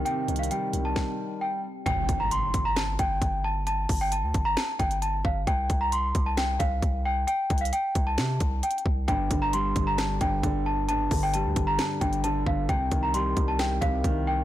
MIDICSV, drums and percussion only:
0, 0, Header, 1, 2, 480
1, 0, Start_track
1, 0, Tempo, 451128
1, 63, Time_signature, 4, 2, 24, 8
1, 15364, End_track
2, 0, Start_track
2, 0, Title_t, "Drums"
2, 62, Note_on_c, 9, 42, 65
2, 169, Note_off_c, 9, 42, 0
2, 302, Note_on_c, 9, 42, 50
2, 383, Note_off_c, 9, 42, 0
2, 383, Note_on_c, 9, 42, 67
2, 462, Note_off_c, 9, 42, 0
2, 462, Note_on_c, 9, 42, 86
2, 542, Note_off_c, 9, 42, 0
2, 542, Note_on_c, 9, 42, 83
2, 648, Note_off_c, 9, 42, 0
2, 781, Note_on_c, 9, 42, 80
2, 888, Note_off_c, 9, 42, 0
2, 1022, Note_on_c, 9, 36, 108
2, 1022, Note_on_c, 9, 38, 88
2, 1128, Note_off_c, 9, 36, 0
2, 1128, Note_off_c, 9, 38, 0
2, 1982, Note_on_c, 9, 36, 105
2, 1982, Note_on_c, 9, 42, 65
2, 2089, Note_off_c, 9, 36, 0
2, 2089, Note_off_c, 9, 42, 0
2, 2221, Note_on_c, 9, 42, 85
2, 2223, Note_on_c, 9, 36, 95
2, 2328, Note_off_c, 9, 42, 0
2, 2329, Note_off_c, 9, 36, 0
2, 2462, Note_on_c, 9, 42, 85
2, 2568, Note_off_c, 9, 42, 0
2, 2702, Note_on_c, 9, 42, 85
2, 2703, Note_on_c, 9, 36, 93
2, 2808, Note_off_c, 9, 42, 0
2, 2810, Note_off_c, 9, 36, 0
2, 2942, Note_on_c, 9, 42, 70
2, 2943, Note_on_c, 9, 38, 112
2, 3048, Note_off_c, 9, 42, 0
2, 3049, Note_off_c, 9, 38, 0
2, 3182, Note_on_c, 9, 42, 69
2, 3183, Note_on_c, 9, 36, 90
2, 3288, Note_off_c, 9, 42, 0
2, 3290, Note_off_c, 9, 36, 0
2, 3421, Note_on_c, 9, 36, 97
2, 3422, Note_on_c, 9, 42, 81
2, 3528, Note_off_c, 9, 36, 0
2, 3528, Note_off_c, 9, 42, 0
2, 3902, Note_on_c, 9, 42, 69
2, 4009, Note_off_c, 9, 42, 0
2, 4141, Note_on_c, 9, 46, 93
2, 4142, Note_on_c, 9, 36, 94
2, 4248, Note_off_c, 9, 46, 0
2, 4249, Note_off_c, 9, 36, 0
2, 4382, Note_on_c, 9, 42, 86
2, 4488, Note_off_c, 9, 42, 0
2, 4622, Note_on_c, 9, 42, 84
2, 4623, Note_on_c, 9, 36, 94
2, 4728, Note_off_c, 9, 42, 0
2, 4730, Note_off_c, 9, 36, 0
2, 4861, Note_on_c, 9, 42, 73
2, 4862, Note_on_c, 9, 38, 109
2, 4968, Note_off_c, 9, 42, 0
2, 4969, Note_off_c, 9, 38, 0
2, 5102, Note_on_c, 9, 42, 58
2, 5103, Note_on_c, 9, 36, 87
2, 5209, Note_off_c, 9, 42, 0
2, 5210, Note_off_c, 9, 36, 0
2, 5222, Note_on_c, 9, 42, 62
2, 5329, Note_off_c, 9, 42, 0
2, 5342, Note_on_c, 9, 42, 83
2, 5449, Note_off_c, 9, 42, 0
2, 5582, Note_on_c, 9, 36, 86
2, 5689, Note_off_c, 9, 36, 0
2, 5822, Note_on_c, 9, 36, 110
2, 5822, Note_on_c, 9, 42, 66
2, 5929, Note_off_c, 9, 36, 0
2, 5929, Note_off_c, 9, 42, 0
2, 6061, Note_on_c, 9, 42, 88
2, 6063, Note_on_c, 9, 36, 100
2, 6168, Note_off_c, 9, 42, 0
2, 6169, Note_off_c, 9, 36, 0
2, 6302, Note_on_c, 9, 42, 90
2, 6408, Note_off_c, 9, 42, 0
2, 6542, Note_on_c, 9, 42, 81
2, 6543, Note_on_c, 9, 36, 98
2, 6648, Note_off_c, 9, 42, 0
2, 6650, Note_off_c, 9, 36, 0
2, 6782, Note_on_c, 9, 42, 74
2, 6783, Note_on_c, 9, 38, 108
2, 6888, Note_off_c, 9, 42, 0
2, 6889, Note_off_c, 9, 38, 0
2, 7022, Note_on_c, 9, 42, 71
2, 7023, Note_on_c, 9, 36, 90
2, 7128, Note_off_c, 9, 42, 0
2, 7130, Note_off_c, 9, 36, 0
2, 7261, Note_on_c, 9, 36, 92
2, 7262, Note_on_c, 9, 42, 78
2, 7368, Note_off_c, 9, 36, 0
2, 7368, Note_off_c, 9, 42, 0
2, 7742, Note_on_c, 9, 42, 68
2, 7849, Note_off_c, 9, 42, 0
2, 7981, Note_on_c, 9, 46, 91
2, 7983, Note_on_c, 9, 36, 98
2, 7983, Note_on_c, 9, 42, 53
2, 8062, Note_off_c, 9, 42, 0
2, 8062, Note_on_c, 9, 42, 71
2, 8088, Note_off_c, 9, 46, 0
2, 8089, Note_off_c, 9, 36, 0
2, 8142, Note_off_c, 9, 42, 0
2, 8142, Note_on_c, 9, 42, 90
2, 8222, Note_off_c, 9, 42, 0
2, 8222, Note_on_c, 9, 42, 89
2, 8328, Note_off_c, 9, 42, 0
2, 8462, Note_on_c, 9, 42, 82
2, 8464, Note_on_c, 9, 36, 95
2, 8568, Note_off_c, 9, 42, 0
2, 8570, Note_off_c, 9, 36, 0
2, 8702, Note_on_c, 9, 42, 73
2, 8703, Note_on_c, 9, 38, 112
2, 8808, Note_off_c, 9, 42, 0
2, 8809, Note_off_c, 9, 38, 0
2, 8942, Note_on_c, 9, 42, 72
2, 8944, Note_on_c, 9, 36, 88
2, 9048, Note_off_c, 9, 42, 0
2, 9050, Note_off_c, 9, 36, 0
2, 9183, Note_on_c, 9, 42, 84
2, 9263, Note_off_c, 9, 42, 0
2, 9263, Note_on_c, 9, 42, 64
2, 9343, Note_off_c, 9, 42, 0
2, 9343, Note_on_c, 9, 42, 50
2, 9423, Note_on_c, 9, 36, 85
2, 9449, Note_off_c, 9, 42, 0
2, 9529, Note_off_c, 9, 36, 0
2, 9663, Note_on_c, 9, 36, 106
2, 9663, Note_on_c, 9, 42, 68
2, 9769, Note_off_c, 9, 36, 0
2, 9769, Note_off_c, 9, 42, 0
2, 9902, Note_on_c, 9, 42, 88
2, 9903, Note_on_c, 9, 36, 94
2, 10009, Note_off_c, 9, 42, 0
2, 10010, Note_off_c, 9, 36, 0
2, 10143, Note_on_c, 9, 42, 83
2, 10249, Note_off_c, 9, 42, 0
2, 10382, Note_on_c, 9, 42, 81
2, 10384, Note_on_c, 9, 36, 91
2, 10489, Note_off_c, 9, 42, 0
2, 10490, Note_off_c, 9, 36, 0
2, 10622, Note_on_c, 9, 42, 73
2, 10623, Note_on_c, 9, 38, 112
2, 10728, Note_off_c, 9, 42, 0
2, 10729, Note_off_c, 9, 38, 0
2, 10862, Note_on_c, 9, 42, 71
2, 10864, Note_on_c, 9, 36, 91
2, 10968, Note_off_c, 9, 42, 0
2, 10970, Note_off_c, 9, 36, 0
2, 11102, Note_on_c, 9, 36, 99
2, 11102, Note_on_c, 9, 42, 84
2, 11208, Note_off_c, 9, 36, 0
2, 11209, Note_off_c, 9, 42, 0
2, 11582, Note_on_c, 9, 42, 66
2, 11689, Note_off_c, 9, 42, 0
2, 11822, Note_on_c, 9, 46, 93
2, 11823, Note_on_c, 9, 36, 96
2, 11928, Note_off_c, 9, 46, 0
2, 11929, Note_off_c, 9, 36, 0
2, 12062, Note_on_c, 9, 42, 89
2, 12168, Note_off_c, 9, 42, 0
2, 12302, Note_on_c, 9, 42, 83
2, 12303, Note_on_c, 9, 36, 94
2, 12408, Note_off_c, 9, 42, 0
2, 12410, Note_off_c, 9, 36, 0
2, 12541, Note_on_c, 9, 42, 71
2, 12542, Note_on_c, 9, 38, 112
2, 12648, Note_off_c, 9, 42, 0
2, 12649, Note_off_c, 9, 38, 0
2, 12782, Note_on_c, 9, 42, 57
2, 12783, Note_on_c, 9, 36, 88
2, 12889, Note_off_c, 9, 42, 0
2, 12890, Note_off_c, 9, 36, 0
2, 12902, Note_on_c, 9, 42, 57
2, 13009, Note_off_c, 9, 42, 0
2, 13022, Note_on_c, 9, 42, 80
2, 13128, Note_off_c, 9, 42, 0
2, 13262, Note_on_c, 9, 36, 87
2, 13369, Note_off_c, 9, 36, 0
2, 13502, Note_on_c, 9, 36, 109
2, 13502, Note_on_c, 9, 42, 66
2, 13608, Note_off_c, 9, 42, 0
2, 13609, Note_off_c, 9, 36, 0
2, 13741, Note_on_c, 9, 42, 84
2, 13743, Note_on_c, 9, 36, 98
2, 13848, Note_off_c, 9, 42, 0
2, 13849, Note_off_c, 9, 36, 0
2, 13982, Note_on_c, 9, 42, 86
2, 14088, Note_off_c, 9, 42, 0
2, 14222, Note_on_c, 9, 42, 81
2, 14223, Note_on_c, 9, 36, 91
2, 14328, Note_off_c, 9, 42, 0
2, 14330, Note_off_c, 9, 36, 0
2, 14462, Note_on_c, 9, 42, 71
2, 14463, Note_on_c, 9, 38, 112
2, 14568, Note_off_c, 9, 42, 0
2, 14569, Note_off_c, 9, 38, 0
2, 14702, Note_on_c, 9, 42, 70
2, 14704, Note_on_c, 9, 36, 90
2, 14808, Note_off_c, 9, 42, 0
2, 14810, Note_off_c, 9, 36, 0
2, 14941, Note_on_c, 9, 36, 93
2, 14942, Note_on_c, 9, 42, 80
2, 15048, Note_off_c, 9, 36, 0
2, 15048, Note_off_c, 9, 42, 0
2, 15364, End_track
0, 0, End_of_file